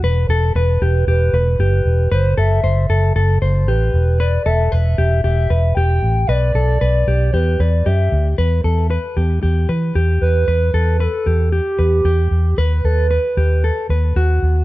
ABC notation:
X:1
M:4/4
L:1/16
Q:1/4=115
K:Em
V:1 name="Soft synth lead"
z4 B4 B4 B4 | c2 e6 z4 B4 | d2 e2 e4 e4 g4 | d8 B2 d2 e3 z |
z12 z2 B2- | B4 A4 G8 | B12- B2 z2 |]
V:2 name="Clean electric guitar"
B2 A2 B2 G2 G2 B2 G4 | B2 A2 c2 A2 A2 c2 G4 | B2 A2 B2 G2 G2 B2 G4 | B2 A2 B2 G2 G2 B2 G4 |
B2 A2 B2 G2 G2 B2 G4 | B2 A2 B2 G2 G2 B2 G4 | B2 A2 B2 G2 A2 B2 F4 |]
V:3 name="Fingered electric bass" clef=bass
E,,,2 E,,,2 E,,,2 E,,,2 E,,,2 E,,,2 F,,,2 E,,,2 | F,,,2 F,,,2 F,,,2 F,,,2 F,,,2 F,,,2 A,,,2 E,,,2- | E,,,2 E,,,2 E,,,2 E,,,2 E,,,2 E,,,2 E,,,2 A,,,2 | B,,,2 B,,,2 B,,,2 B,,,2 E,,2 E,,2 F,,2 D,,2 |
E,,2 E,,3 z E,,2 E,,2 E,2 E,,2 E,,2 | E,,2 E,,3 z E,,3 z E,,2 E,,2 E,,2 | ^D,,2 D,,3 z D,,3 z D,,2 D,,2 D,,2 |]